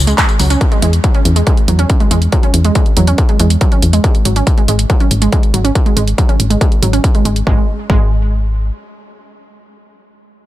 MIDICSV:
0, 0, Header, 1, 4, 480
1, 0, Start_track
1, 0, Tempo, 428571
1, 684, Time_signature, 4, 2, 24, 8
1, 11717, End_track
2, 0, Start_track
2, 0, Title_t, "Synth pluck"
2, 0, Program_c, 0, 84
2, 82, Note_on_c, 0, 56, 77
2, 128, Note_off_c, 0, 56, 0
2, 202, Note_on_c, 0, 56, 83
2, 230, Note_off_c, 0, 56, 0
2, 443, Note_on_c, 0, 54, 77
2, 471, Note_off_c, 0, 54, 0
2, 564, Note_on_c, 0, 61, 80
2, 610, Note_off_c, 0, 61, 0
2, 803, Note_on_c, 0, 56, 76
2, 849, Note_off_c, 0, 56, 0
2, 923, Note_on_c, 0, 56, 76
2, 951, Note_off_c, 0, 56, 0
2, 1163, Note_on_c, 0, 54, 84
2, 1191, Note_off_c, 0, 54, 0
2, 1282, Note_on_c, 0, 61, 76
2, 1329, Note_off_c, 0, 61, 0
2, 1523, Note_on_c, 0, 56, 77
2, 1569, Note_off_c, 0, 56, 0
2, 1643, Note_on_c, 0, 56, 84
2, 1671, Note_off_c, 0, 56, 0
2, 1885, Note_on_c, 0, 54, 75
2, 1912, Note_off_c, 0, 54, 0
2, 2004, Note_on_c, 0, 61, 77
2, 2050, Note_off_c, 0, 61, 0
2, 2244, Note_on_c, 0, 56, 78
2, 2290, Note_off_c, 0, 56, 0
2, 2364, Note_on_c, 0, 56, 82
2, 2391, Note_off_c, 0, 56, 0
2, 2603, Note_on_c, 0, 54, 81
2, 2631, Note_off_c, 0, 54, 0
2, 2724, Note_on_c, 0, 61, 76
2, 2770, Note_off_c, 0, 61, 0
2, 2966, Note_on_c, 0, 56, 77
2, 3011, Note_off_c, 0, 56, 0
2, 3085, Note_on_c, 0, 56, 85
2, 3112, Note_off_c, 0, 56, 0
2, 3325, Note_on_c, 0, 54, 76
2, 3352, Note_off_c, 0, 54, 0
2, 3445, Note_on_c, 0, 61, 74
2, 3490, Note_off_c, 0, 61, 0
2, 3685, Note_on_c, 0, 56, 73
2, 3730, Note_off_c, 0, 56, 0
2, 3806, Note_on_c, 0, 56, 76
2, 3833, Note_off_c, 0, 56, 0
2, 4045, Note_on_c, 0, 54, 84
2, 4072, Note_off_c, 0, 54, 0
2, 4166, Note_on_c, 0, 61, 73
2, 4210, Note_off_c, 0, 61, 0
2, 4405, Note_on_c, 0, 56, 74
2, 4450, Note_off_c, 0, 56, 0
2, 4524, Note_on_c, 0, 56, 82
2, 4552, Note_off_c, 0, 56, 0
2, 4765, Note_on_c, 0, 54, 75
2, 4792, Note_off_c, 0, 54, 0
2, 4885, Note_on_c, 0, 61, 77
2, 4930, Note_off_c, 0, 61, 0
2, 5125, Note_on_c, 0, 56, 76
2, 5170, Note_off_c, 0, 56, 0
2, 5246, Note_on_c, 0, 56, 75
2, 5272, Note_off_c, 0, 56, 0
2, 5486, Note_on_c, 0, 54, 85
2, 5512, Note_off_c, 0, 54, 0
2, 5605, Note_on_c, 0, 61, 72
2, 5650, Note_off_c, 0, 61, 0
2, 5845, Note_on_c, 0, 56, 76
2, 5890, Note_off_c, 0, 56, 0
2, 5965, Note_on_c, 0, 56, 84
2, 5992, Note_off_c, 0, 56, 0
2, 6203, Note_on_c, 0, 54, 75
2, 6231, Note_off_c, 0, 54, 0
2, 6322, Note_on_c, 0, 61, 74
2, 6369, Note_off_c, 0, 61, 0
2, 6563, Note_on_c, 0, 56, 75
2, 6609, Note_off_c, 0, 56, 0
2, 6682, Note_on_c, 0, 56, 75
2, 6710, Note_off_c, 0, 56, 0
2, 6922, Note_on_c, 0, 54, 85
2, 6950, Note_off_c, 0, 54, 0
2, 7044, Note_on_c, 0, 61, 74
2, 7089, Note_off_c, 0, 61, 0
2, 7284, Note_on_c, 0, 56, 73
2, 7330, Note_off_c, 0, 56, 0
2, 7404, Note_on_c, 0, 56, 85
2, 7432, Note_off_c, 0, 56, 0
2, 7645, Note_on_c, 0, 54, 77
2, 7672, Note_off_c, 0, 54, 0
2, 7763, Note_on_c, 0, 61, 76
2, 7809, Note_off_c, 0, 61, 0
2, 8004, Note_on_c, 0, 56, 77
2, 8050, Note_off_c, 0, 56, 0
2, 8124, Note_on_c, 0, 56, 78
2, 8151, Note_off_c, 0, 56, 0
2, 8364, Note_on_c, 0, 56, 90
2, 8498, Note_off_c, 0, 56, 0
2, 8845, Note_on_c, 0, 56, 91
2, 8978, Note_off_c, 0, 56, 0
2, 11717, End_track
3, 0, Start_track
3, 0, Title_t, "FM bass"
3, 0, Program_c, 1, 39
3, 0, Note_on_c, 1, 37, 95
3, 157, Note_off_c, 1, 37, 0
3, 445, Note_on_c, 1, 37, 93
3, 638, Note_off_c, 1, 37, 0
3, 924, Note_on_c, 1, 40, 98
3, 1117, Note_off_c, 1, 40, 0
3, 1404, Note_on_c, 1, 40, 99
3, 1597, Note_off_c, 1, 40, 0
3, 1884, Note_on_c, 1, 40, 100
3, 2077, Note_off_c, 1, 40, 0
3, 2364, Note_on_c, 1, 40, 90
3, 2557, Note_off_c, 1, 40, 0
3, 2844, Note_on_c, 1, 40, 99
3, 3037, Note_off_c, 1, 40, 0
3, 3325, Note_on_c, 1, 40, 101
3, 3517, Note_off_c, 1, 40, 0
3, 3806, Note_on_c, 1, 40, 100
3, 3998, Note_off_c, 1, 40, 0
3, 4286, Note_on_c, 1, 40, 88
3, 4478, Note_off_c, 1, 40, 0
3, 4766, Note_on_c, 1, 32, 98
3, 4958, Note_off_c, 1, 32, 0
3, 5246, Note_on_c, 1, 32, 98
3, 5438, Note_off_c, 1, 32, 0
3, 5725, Note_on_c, 1, 32, 99
3, 5918, Note_off_c, 1, 32, 0
3, 6205, Note_on_c, 1, 32, 89
3, 6397, Note_off_c, 1, 32, 0
3, 6683, Note_on_c, 1, 32, 93
3, 6877, Note_off_c, 1, 32, 0
3, 7164, Note_on_c, 1, 32, 94
3, 7357, Note_off_c, 1, 32, 0
3, 7644, Note_on_c, 1, 32, 102
3, 7837, Note_off_c, 1, 32, 0
3, 8123, Note_on_c, 1, 32, 93
3, 8317, Note_off_c, 1, 32, 0
3, 8365, Note_on_c, 1, 32, 94
3, 8498, Note_off_c, 1, 32, 0
3, 8844, Note_on_c, 1, 32, 93
3, 9759, Note_off_c, 1, 32, 0
3, 11717, End_track
4, 0, Start_track
4, 0, Title_t, "Drums"
4, 82, Note_on_c, 9, 42, 50
4, 82, Note_on_c, 9, 54, 31
4, 194, Note_off_c, 9, 42, 0
4, 194, Note_off_c, 9, 54, 0
4, 202, Note_on_c, 9, 39, 114
4, 202, Note_on_c, 9, 42, 49
4, 202, Note_on_c, 9, 54, 42
4, 204, Note_on_c, 9, 36, 127
4, 314, Note_off_c, 9, 39, 0
4, 314, Note_off_c, 9, 42, 0
4, 314, Note_off_c, 9, 54, 0
4, 316, Note_off_c, 9, 36, 0
4, 322, Note_on_c, 9, 42, 25
4, 322, Note_on_c, 9, 54, 30
4, 434, Note_off_c, 9, 42, 0
4, 434, Note_off_c, 9, 54, 0
4, 443, Note_on_c, 9, 46, 94
4, 443, Note_on_c, 9, 54, 74
4, 555, Note_off_c, 9, 46, 0
4, 555, Note_off_c, 9, 54, 0
4, 563, Note_on_c, 9, 42, 50
4, 563, Note_on_c, 9, 54, 31
4, 675, Note_off_c, 9, 42, 0
4, 675, Note_off_c, 9, 54, 0
4, 683, Note_on_c, 9, 42, 48
4, 684, Note_on_c, 9, 36, 110
4, 795, Note_off_c, 9, 42, 0
4, 796, Note_off_c, 9, 36, 0
4, 803, Note_on_c, 9, 42, 23
4, 915, Note_off_c, 9, 42, 0
4, 923, Note_on_c, 9, 42, 87
4, 1035, Note_off_c, 9, 42, 0
4, 1043, Note_on_c, 9, 42, 49
4, 1155, Note_off_c, 9, 42, 0
4, 1163, Note_on_c, 9, 42, 51
4, 1164, Note_on_c, 9, 36, 119
4, 1275, Note_off_c, 9, 42, 0
4, 1276, Note_off_c, 9, 36, 0
4, 1283, Note_on_c, 9, 42, 24
4, 1395, Note_off_c, 9, 42, 0
4, 1403, Note_on_c, 9, 42, 85
4, 1515, Note_off_c, 9, 42, 0
4, 1524, Note_on_c, 9, 42, 51
4, 1636, Note_off_c, 9, 42, 0
4, 1643, Note_on_c, 9, 42, 50
4, 1644, Note_on_c, 9, 36, 115
4, 1755, Note_off_c, 9, 42, 0
4, 1756, Note_off_c, 9, 36, 0
4, 1763, Note_on_c, 9, 42, 26
4, 1875, Note_off_c, 9, 42, 0
4, 1883, Note_on_c, 9, 42, 85
4, 1995, Note_off_c, 9, 42, 0
4, 2003, Note_on_c, 9, 42, 48
4, 2115, Note_off_c, 9, 42, 0
4, 2123, Note_on_c, 9, 42, 50
4, 2125, Note_on_c, 9, 36, 120
4, 2235, Note_off_c, 9, 42, 0
4, 2237, Note_off_c, 9, 36, 0
4, 2244, Note_on_c, 9, 42, 24
4, 2356, Note_off_c, 9, 42, 0
4, 2363, Note_on_c, 9, 42, 81
4, 2475, Note_off_c, 9, 42, 0
4, 2483, Note_on_c, 9, 42, 49
4, 2595, Note_off_c, 9, 42, 0
4, 2603, Note_on_c, 9, 42, 51
4, 2605, Note_on_c, 9, 36, 109
4, 2715, Note_off_c, 9, 42, 0
4, 2717, Note_off_c, 9, 36, 0
4, 2724, Note_on_c, 9, 42, 25
4, 2836, Note_off_c, 9, 42, 0
4, 2843, Note_on_c, 9, 42, 91
4, 2955, Note_off_c, 9, 42, 0
4, 2963, Note_on_c, 9, 42, 50
4, 3075, Note_off_c, 9, 42, 0
4, 3083, Note_on_c, 9, 42, 51
4, 3085, Note_on_c, 9, 36, 116
4, 3195, Note_off_c, 9, 42, 0
4, 3197, Note_off_c, 9, 36, 0
4, 3203, Note_on_c, 9, 42, 25
4, 3315, Note_off_c, 9, 42, 0
4, 3322, Note_on_c, 9, 42, 86
4, 3434, Note_off_c, 9, 42, 0
4, 3443, Note_on_c, 9, 42, 54
4, 3555, Note_off_c, 9, 42, 0
4, 3563, Note_on_c, 9, 42, 53
4, 3565, Note_on_c, 9, 36, 110
4, 3675, Note_off_c, 9, 42, 0
4, 3677, Note_off_c, 9, 36, 0
4, 3683, Note_on_c, 9, 42, 27
4, 3795, Note_off_c, 9, 42, 0
4, 3803, Note_on_c, 9, 42, 88
4, 3915, Note_off_c, 9, 42, 0
4, 3924, Note_on_c, 9, 42, 50
4, 4036, Note_off_c, 9, 42, 0
4, 4043, Note_on_c, 9, 42, 52
4, 4045, Note_on_c, 9, 36, 118
4, 4155, Note_off_c, 9, 42, 0
4, 4157, Note_off_c, 9, 36, 0
4, 4163, Note_on_c, 9, 42, 25
4, 4275, Note_off_c, 9, 42, 0
4, 4284, Note_on_c, 9, 42, 91
4, 4396, Note_off_c, 9, 42, 0
4, 4404, Note_on_c, 9, 42, 51
4, 4516, Note_off_c, 9, 42, 0
4, 4525, Note_on_c, 9, 36, 106
4, 4525, Note_on_c, 9, 42, 51
4, 4637, Note_off_c, 9, 36, 0
4, 4637, Note_off_c, 9, 42, 0
4, 4645, Note_on_c, 9, 42, 25
4, 4757, Note_off_c, 9, 42, 0
4, 4764, Note_on_c, 9, 42, 88
4, 4876, Note_off_c, 9, 42, 0
4, 4884, Note_on_c, 9, 42, 52
4, 4996, Note_off_c, 9, 42, 0
4, 5004, Note_on_c, 9, 42, 54
4, 5005, Note_on_c, 9, 36, 114
4, 5116, Note_off_c, 9, 42, 0
4, 5117, Note_off_c, 9, 36, 0
4, 5125, Note_on_c, 9, 42, 27
4, 5237, Note_off_c, 9, 42, 0
4, 5245, Note_on_c, 9, 42, 91
4, 5357, Note_off_c, 9, 42, 0
4, 5364, Note_on_c, 9, 42, 53
4, 5476, Note_off_c, 9, 42, 0
4, 5485, Note_on_c, 9, 36, 110
4, 5485, Note_on_c, 9, 42, 54
4, 5597, Note_off_c, 9, 36, 0
4, 5597, Note_off_c, 9, 42, 0
4, 5604, Note_on_c, 9, 42, 27
4, 5716, Note_off_c, 9, 42, 0
4, 5723, Note_on_c, 9, 42, 91
4, 5835, Note_off_c, 9, 42, 0
4, 5844, Note_on_c, 9, 42, 54
4, 5956, Note_off_c, 9, 42, 0
4, 5964, Note_on_c, 9, 42, 54
4, 5965, Note_on_c, 9, 36, 114
4, 6076, Note_off_c, 9, 42, 0
4, 6077, Note_off_c, 9, 36, 0
4, 6084, Note_on_c, 9, 42, 27
4, 6196, Note_off_c, 9, 42, 0
4, 6205, Note_on_c, 9, 42, 92
4, 6317, Note_off_c, 9, 42, 0
4, 6325, Note_on_c, 9, 42, 53
4, 6437, Note_off_c, 9, 42, 0
4, 6444, Note_on_c, 9, 42, 54
4, 6445, Note_on_c, 9, 36, 109
4, 6556, Note_off_c, 9, 42, 0
4, 6557, Note_off_c, 9, 36, 0
4, 6564, Note_on_c, 9, 42, 26
4, 6676, Note_off_c, 9, 42, 0
4, 6683, Note_on_c, 9, 42, 92
4, 6795, Note_off_c, 9, 42, 0
4, 6804, Note_on_c, 9, 42, 53
4, 6916, Note_off_c, 9, 42, 0
4, 6925, Note_on_c, 9, 36, 114
4, 6925, Note_on_c, 9, 42, 53
4, 7037, Note_off_c, 9, 36, 0
4, 7037, Note_off_c, 9, 42, 0
4, 7046, Note_on_c, 9, 42, 27
4, 7158, Note_off_c, 9, 42, 0
4, 7165, Note_on_c, 9, 42, 93
4, 7277, Note_off_c, 9, 42, 0
4, 7286, Note_on_c, 9, 42, 57
4, 7398, Note_off_c, 9, 42, 0
4, 7405, Note_on_c, 9, 36, 114
4, 7406, Note_on_c, 9, 42, 52
4, 7517, Note_off_c, 9, 36, 0
4, 7518, Note_off_c, 9, 42, 0
4, 7525, Note_on_c, 9, 42, 27
4, 7637, Note_off_c, 9, 42, 0
4, 7645, Note_on_c, 9, 42, 93
4, 7757, Note_off_c, 9, 42, 0
4, 7765, Note_on_c, 9, 42, 54
4, 7877, Note_off_c, 9, 42, 0
4, 7885, Note_on_c, 9, 36, 120
4, 7885, Note_on_c, 9, 42, 54
4, 7997, Note_off_c, 9, 36, 0
4, 7997, Note_off_c, 9, 42, 0
4, 8004, Note_on_c, 9, 42, 26
4, 8116, Note_off_c, 9, 42, 0
4, 8124, Note_on_c, 9, 42, 91
4, 8236, Note_off_c, 9, 42, 0
4, 8245, Note_on_c, 9, 42, 55
4, 8357, Note_off_c, 9, 42, 0
4, 8364, Note_on_c, 9, 36, 109
4, 8476, Note_off_c, 9, 36, 0
4, 8844, Note_on_c, 9, 36, 114
4, 8956, Note_off_c, 9, 36, 0
4, 11717, End_track
0, 0, End_of_file